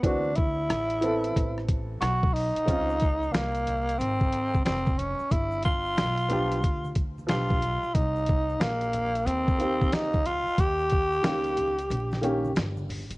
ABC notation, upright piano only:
X:1
M:4/4
L:1/8
Q:"Swing 16ths" 1/4=91
K:Cphr
V:1 name="Upright piano"
[=E,=B,C^F] z2 [E,B,C=A]3 z2 | [E,CDF] z6 z | z3 [F,=B,=DG] z2 [F,B,DG] z | z4 z [E,B,CG] z2 |
z2 [E,B,DG] z2 [E,B,DG] z2 |]